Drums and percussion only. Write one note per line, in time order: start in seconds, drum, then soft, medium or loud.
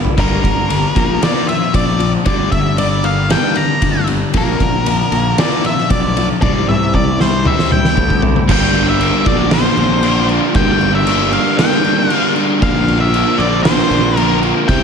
0.05 floor tom medium
0.18 kick medium
0.18 crash medium
0.44 kick medium
0.44 ride medium
0.70 ride medium
0.96 kick medium
0.96 ride medium
1.23 snare loud
1.23 ride medium
1.49 ride medium
1.74 kick medium
1.74 ride medium
2.00 ride medium
2.26 kick medium
2.26 ride medium
2.52 kick medium
2.52 ride medium
2.78 ride medium
3.04 ride medium
3.30 snare loud
3.30 ride medium
3.55 ride medium
3.82 kick medium
3.82 ride medium
4.07 ride medium
4.34 kick medium
4.34 ride medium
4.60 kick medium
4.60 ride medium
4.86 ride medium
5.12 ride medium
5.38 snare loud
5.38 ride medium
5.64 ride medium
5.78 snare soft
5.90 kick medium
5.90 ride medium
6.17 ride medium
6.42 kick loud
6.42 high tom medium
6.69 high tom medium
6.94 kick medium
7.20 snare medium
7.45 mid tom medium
7.59 snare medium
7.72 mid tom medium
7.85 snare medium
7.97 kick medium
7.97 floor tom medium
8.10 kick medium
8.22 floor tom medium
8.36 floor tom medium
8.49 kick loud
8.49 crash loud
8.49 crash medium
8.75 crash soft
9.01 crash medium
9.26 kick loud
9.26 crash medium
9.51 snare loud
9.51 crash medium
9.77 crash medium
10.03 crash medium
10.29 crash medium
10.54 kick loud
10.54 crash medium
10.81 crash medium
11.07 crash medium
11.32 crash medium
11.59 snare loud
11.59 crash medium
11.84 crash medium
12.10 crash medium
12.36 crash medium
12.62 kick loud
12.62 crash medium
12.88 crash medium
13.14 crash medium
13.40 crash medium
13.65 snare loud
13.65 crash medium
13.91 crash soft
14.17 crash medium
14.43 crash medium
14.69 kick medium
14.69 crash medium